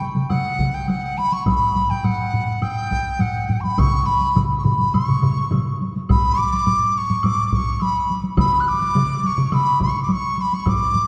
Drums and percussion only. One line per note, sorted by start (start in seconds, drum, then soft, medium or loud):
0.01 taiko high soft
0.15 taiko mid medium
0.15 taiko high soft
0.30 taiko mid medium
0.30 taiko high medium
0.30 high woodblock soft
0.59 taiko medium
0.59 taiko mid medium
0.59 taiko high soft
0.88 taiko high medium
0.88 high woodblock soft
1.18 taiko high medium
1.33 taiko high medium
1.46 taiko medium
1.46 taiko low-mid medium
1.46 taiko high medium
1.46 high woodblock medium
1.76 taiko low-mid medium
1.76 taiko high soft
1.91 taiko low-mid medium
1.91 taiko high soft
2.04 taiko low-mid medium
2.04 taiko high medium
2.04 high woodblock soft
2.34 taiko low-mid medium
2.48 taiko high soft
2.62 taiko low-mid medium
2.62 taiko high medium
2.62 high woodblock medium
2.91 taiko medium
2.91 taiko high soft
3.20 taiko low-mid medium
3.20 taiko high medium
3.20 high woodblock soft
3.49 taiko low-mid medium
3.49 taiko high soft
3.64 taiko high soft
3.78 taiko loud
3.78 taiko low-mid loud
3.78 taiko mid medium
3.78 taiko high medium
3.78 high woodblock medium
4.07 taiko high soft
4.21 taiko high soft
4.36 taiko medium
4.36 taiko low-mid medium
4.36 taiko mid medium
4.36 taiko high medium
4.36 high woodblock soft
4.64 taiko low-mid loud
4.64 taiko mid medium
4.64 taiko high soft
4.79 taiko high soft
4.94 taiko low-mid medium
4.94 taiko mid medium
4.94 taiko high medium
4.94 high woodblock medium
5.08 taiko low-mid medium
5.08 taiko mid medium
5.22 taiko low-mid medium
5.22 taiko mid medium
5.22 high woodblock soft
5.37 taiko high soft
5.51 taiko low-mid medium
5.51 taiko mid medium
5.51 taiko high medium
5.51 high woodblock soft
5.81 taiko high medium
5.96 taiko high soft
6.09 taiko loud
6.09 taiko low-mid loud
6.09 taiko high medium
6.09 high woodblock medium
6.39 taiko high medium
6.53 taiko high soft
6.66 taiko low-mid medium
6.66 taiko high medium
6.66 high woodblock soft
7.10 taiko low-mid medium
7.10 taiko high medium
7.23 taiko low-mid loud
7.23 taiko high medium
7.23 high woodblock medium
7.53 taiko medium
7.53 taiko low-mid loud
7.53 taiko high medium
7.80 taiko high medium
7.80 high woodblock soft
8.10 taiko high medium
8.24 taiko high medium
8.37 taiko loud
8.37 taiko mid loud
8.37 taiko high medium
8.37 high woodblock medium
8.81 taiko high medium
8.95 taiko mid loud
8.95 taiko high medium
8.95 high woodblock soft
9.24 taiko high medium
9.38 taiko mid medium
9.38 taiko high medium
9.52 taiko mid loud
9.52 taiko high medium
9.52 high woodblock medium
9.81 taiko medium
9.81 taiko mid loud
9.81 taiko high medium
10.09 taiko high medium
10.09 high woodblock soft
10.38 taiko high medium
10.53 taiko high medium
10.65 taiko loud
10.65 taiko low-mid medium
10.65 taiko high medium
10.65 high woodblock medium
10.94 taiko low-mid medium
10.94 taiko high medium